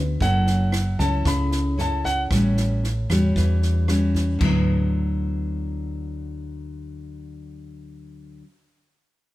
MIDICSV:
0, 0, Header, 1, 5, 480
1, 0, Start_track
1, 0, Key_signature, 2, "major"
1, 0, Tempo, 526870
1, 177, Time_signature, 4, 2, 24, 8
1, 8514, End_track
2, 0, Start_track
2, 0, Title_t, "Grand piano"
2, 0, Program_c, 0, 0
2, 200, Note_on_c, 0, 78, 77
2, 872, Note_off_c, 0, 78, 0
2, 904, Note_on_c, 0, 81, 83
2, 1133, Note_off_c, 0, 81, 0
2, 1160, Note_on_c, 0, 83, 74
2, 1596, Note_off_c, 0, 83, 0
2, 1650, Note_on_c, 0, 81, 72
2, 1867, Note_off_c, 0, 81, 0
2, 1868, Note_on_c, 0, 78, 88
2, 2009, Note_off_c, 0, 78, 0
2, 8514, End_track
3, 0, Start_track
3, 0, Title_t, "Nylon-string guitar"
3, 0, Program_c, 1, 24
3, 0, Note_on_c, 1, 50, 57
3, 163, Note_off_c, 1, 50, 0
3, 185, Note_on_c, 1, 54, 45
3, 189, Note_on_c, 1, 61, 44
3, 189, Note_on_c, 1, 64, 44
3, 194, Note_on_c, 1, 69, 47
3, 660, Note_off_c, 1, 61, 0
3, 660, Note_off_c, 1, 64, 0
3, 663, Note_off_c, 1, 69, 0
3, 917, Note_on_c, 1, 61, 57
3, 921, Note_on_c, 1, 64, 65
3, 922, Note_on_c, 1, 69, 63
3, 1117, Note_off_c, 1, 54, 0
3, 1145, Note_on_c, 1, 49, 50
3, 1589, Note_off_c, 1, 61, 0
3, 1589, Note_off_c, 1, 64, 0
3, 1591, Note_off_c, 1, 69, 0
3, 1618, Note_on_c, 1, 61, 49
3, 1627, Note_on_c, 1, 64, 56
3, 1627, Note_on_c, 1, 69, 53
3, 2059, Note_off_c, 1, 61, 0
3, 2062, Note_off_c, 1, 69, 0
3, 2064, Note_off_c, 1, 64, 0
3, 2077, Note_off_c, 1, 49, 0
3, 2112, Note_on_c, 1, 55, 49
3, 2116, Note_on_c, 1, 45, 48
3, 2119, Note_on_c, 1, 61, 47
3, 2128, Note_on_c, 1, 66, 53
3, 2582, Note_off_c, 1, 55, 0
3, 2585, Note_off_c, 1, 61, 0
3, 2590, Note_off_c, 1, 66, 0
3, 2836, Note_on_c, 1, 55, 54
3, 2842, Note_on_c, 1, 61, 56
3, 2845, Note_on_c, 1, 66, 63
3, 3043, Note_off_c, 1, 45, 0
3, 3067, Note_on_c, 1, 52, 52
3, 3508, Note_off_c, 1, 55, 0
3, 3511, Note_off_c, 1, 61, 0
3, 3512, Note_off_c, 1, 66, 0
3, 3540, Note_on_c, 1, 55, 44
3, 3545, Note_on_c, 1, 66, 55
3, 3549, Note_on_c, 1, 61, 50
3, 3980, Note_off_c, 1, 55, 0
3, 3983, Note_off_c, 1, 66, 0
3, 3985, Note_off_c, 1, 61, 0
3, 3992, Note_off_c, 1, 52, 0
3, 3996, Note_on_c, 1, 50, 52
3, 4020, Note_on_c, 1, 54, 54
3, 4037, Note_on_c, 1, 59, 47
3, 4049, Note_on_c, 1, 64, 51
3, 7678, Note_off_c, 1, 50, 0
3, 7702, Note_off_c, 1, 54, 0
3, 7720, Note_off_c, 1, 59, 0
3, 7732, Note_off_c, 1, 64, 0
3, 8514, End_track
4, 0, Start_track
4, 0, Title_t, "Fingered electric bass"
4, 0, Program_c, 2, 33
4, 0, Note_on_c, 2, 38, 102
4, 145, Note_off_c, 2, 38, 0
4, 190, Note_on_c, 2, 30, 96
4, 867, Note_off_c, 2, 30, 0
4, 907, Note_on_c, 2, 37, 90
4, 1125, Note_off_c, 2, 37, 0
4, 1144, Note_on_c, 2, 37, 87
4, 2064, Note_off_c, 2, 37, 0
4, 2100, Note_on_c, 2, 33, 92
4, 2782, Note_off_c, 2, 33, 0
4, 2822, Note_on_c, 2, 40, 78
4, 3043, Note_off_c, 2, 40, 0
4, 3060, Note_on_c, 2, 40, 91
4, 3982, Note_off_c, 2, 40, 0
4, 4019, Note_on_c, 2, 38, 79
4, 7665, Note_off_c, 2, 38, 0
4, 8514, End_track
5, 0, Start_track
5, 0, Title_t, "Drums"
5, 187, Note_on_c, 9, 36, 58
5, 190, Note_on_c, 9, 38, 23
5, 278, Note_off_c, 9, 36, 0
5, 281, Note_off_c, 9, 38, 0
5, 425, Note_on_c, 9, 38, 23
5, 516, Note_off_c, 9, 38, 0
5, 659, Note_on_c, 9, 37, 52
5, 659, Note_on_c, 9, 38, 23
5, 750, Note_off_c, 9, 37, 0
5, 750, Note_off_c, 9, 38, 0
5, 903, Note_on_c, 9, 36, 25
5, 903, Note_on_c, 9, 38, 23
5, 994, Note_off_c, 9, 36, 0
5, 994, Note_off_c, 9, 38, 0
5, 1143, Note_on_c, 9, 36, 56
5, 1143, Note_on_c, 9, 37, 58
5, 1143, Note_on_c, 9, 38, 23
5, 1234, Note_off_c, 9, 36, 0
5, 1234, Note_off_c, 9, 37, 0
5, 1234, Note_off_c, 9, 38, 0
5, 1380, Note_on_c, 9, 38, 23
5, 1471, Note_off_c, 9, 38, 0
5, 1625, Note_on_c, 9, 38, 23
5, 1716, Note_off_c, 9, 38, 0
5, 1863, Note_on_c, 9, 36, 24
5, 1868, Note_on_c, 9, 38, 22
5, 1954, Note_off_c, 9, 36, 0
5, 1959, Note_off_c, 9, 38, 0
5, 2101, Note_on_c, 9, 36, 61
5, 2102, Note_on_c, 9, 37, 54
5, 2102, Note_on_c, 9, 38, 21
5, 2193, Note_off_c, 9, 36, 0
5, 2193, Note_off_c, 9, 37, 0
5, 2193, Note_off_c, 9, 38, 0
5, 2340, Note_on_c, 9, 38, 22
5, 2431, Note_off_c, 9, 38, 0
5, 2585, Note_on_c, 9, 38, 22
5, 2676, Note_off_c, 9, 38, 0
5, 2821, Note_on_c, 9, 36, 23
5, 2823, Note_on_c, 9, 37, 60
5, 2823, Note_on_c, 9, 38, 21
5, 2912, Note_off_c, 9, 36, 0
5, 2914, Note_off_c, 9, 37, 0
5, 2914, Note_off_c, 9, 38, 0
5, 3061, Note_on_c, 9, 36, 52
5, 3061, Note_on_c, 9, 38, 23
5, 3152, Note_off_c, 9, 36, 0
5, 3152, Note_off_c, 9, 38, 0
5, 3300, Note_on_c, 9, 38, 20
5, 3391, Note_off_c, 9, 38, 0
5, 3537, Note_on_c, 9, 37, 53
5, 3537, Note_on_c, 9, 38, 19
5, 3628, Note_off_c, 9, 37, 0
5, 3628, Note_off_c, 9, 38, 0
5, 3777, Note_on_c, 9, 36, 22
5, 3781, Note_on_c, 9, 38, 23
5, 3868, Note_off_c, 9, 36, 0
5, 3872, Note_off_c, 9, 38, 0
5, 4015, Note_on_c, 9, 43, 69
5, 4015, Note_on_c, 9, 52, 59
5, 4016, Note_on_c, 9, 36, 67
5, 4106, Note_off_c, 9, 43, 0
5, 4106, Note_off_c, 9, 52, 0
5, 4107, Note_off_c, 9, 36, 0
5, 8514, End_track
0, 0, End_of_file